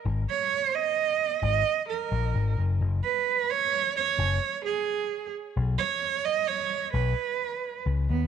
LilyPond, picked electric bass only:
\new Staff \with { instrumentName = "Picked electric bass" } { \clef bass \time 3/4 \key b \major \tempo 4 = 131 gis,,8 r2 r8 | gis,,8 r4 ais,,8 gis,,8 fis,,8 | fis,,8 r2 r8 | fis,,8 r2 r8 |
b,,8 r2 r8 | b,,8 r4. cis,8 dis,8 | }